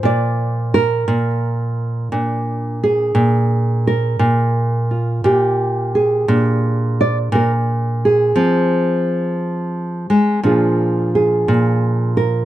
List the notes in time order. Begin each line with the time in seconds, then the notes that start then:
Already playing: F3 F4
0.03 A#2 D5
0.74 A#4
1.08 A#2
2.12 A#2 D4
2.83 G#4
3.15 A#2
3.87 A#4
4.19 A#2
4.91 F4
5.24 A#2 G4
5.95 G#4
6.28 A#2 D4
7.01 D5
7.32 A#2 A#4
8.05 G#4
8.36 F3 C4
10.10 G#3
10.43 A#2 F3 D4 F4 G#4
11.15 G#4
11.48 A#2
12.17 A#4